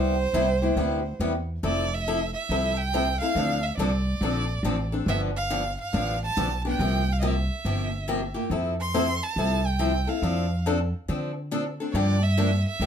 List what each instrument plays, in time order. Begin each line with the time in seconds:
Already playing: upright bass C2, steel-string acoustic guitar C3 G3 B3 E4 G4, violin C5
0.33 upright bass C2, steel-string acoustic guitar C3 G3 B3 E4 G4
0.62 steel-string acoustic guitar B3 E4 G4
0.76 upright bass D2, steel-string acoustic guitar C3 G3 B3 E4 G4
1.20 upright bass E2, steel-string acoustic guitar C3 G3 B3 E4 G4
1.63 upright bass F1, steel-string acoustic guitar F3 C4 E4 A4, violin D5
1.94 violin E5
2.08 steel-string acoustic guitar F3 C4 E4 A4
2.34 violin E5
2.49 upright bass C2, steel-string acoustic guitar F3 C4 E4 A4
2.77 violin G5
2.94 steel-string acoustic guitar F3 C4 E4 A4
3.20 steel-string acoustic guitar C4 E4 A4, violin F5
3.35 upright bass D2, steel-string acoustic guitar D3 F3 C4 D4 A4
3.63 violin E5
3.77 upright bass C2, steel-string acoustic guitar D3 F3 C4 D4 A4, violin D5
4.21 upright bass A#1, steel-string acoustic guitar D3 F3 C4 D4 A4
4.63 upright bass A1, steel-string acoustic guitar D3 F3 C4 D4 A4
4.92 steel-string acoustic guitar C4 D4 A4
5.06 upright bass G1, steel-string acoustic guitar D3 F3 B3 D4 G4, violin E5
5.36 violin F5
5.50 steel-string acoustic guitar D3 F3 B3 D4 G4
5.80 violin F5
5.93 upright bass A1, steel-string acoustic guitar D3 F3 B3 D4 G4
6.24 violin A5
6.37 upright bass B1, steel-string acoustic guitar D3 F3 B3 D4 G4
6.65 steel-string acoustic guitar B3 D4 G4
6.69 violin G5
6.79 upright bass C2, steel-string acoustic guitar C3 F3 A#3 F4 G4
7.13 violin F5
7.20 steel-string acoustic guitar C3 F3 A#3 F4 G4, violin D#5
7.27 violin E5
7.65 upright bass G1, steel-string acoustic guitar C3 F3 A#3 F4 G4
8.08 steel-string acoustic guitar C3 F3 A#3 F4 G4
8.34 steel-string acoustic guitar A#3 F4 G4
8.50 upright bass F2, steel-string acoustic guitar F3 C4 E4 A4
8.81 violin C6
8.94 steel-string acoustic guitar F3 C4 E4 A4
9.23 violin A5
9.36 upright bass C2, steel-string acoustic guitar F3 C4 E4 A4
9.67 violin G5
9.79 steel-string acoustic guitar F3 C4 E4 A4
10.07 steel-string acoustic guitar C4 E4 A4, violin F5
10.22 upright bass F2, steel-string acoustic guitar F3 C4 D4 A4
10.66 steel-string acoustic guitar F3 C4 D4 A4
11.08 upright bass D3, steel-string acoustic guitar F3 C4 D4 A4
11.51 steel-string acoustic guitar F3 C4 D4 A4
11.80 steel-string acoustic guitar C4 D4 A4
11.92 upright bass G2, steel-string acoustic guitar D3 F3 A#3 D4 G4, violin C#5
11.96 violin D5
12.23 violin E5
12.37 steel-string acoustic guitar D3 F3 A#3 D4 G4
12.68 violin E5
12.80 upright bass D2, steel-string acoustic guitar D3 F3 A#3 D4 G4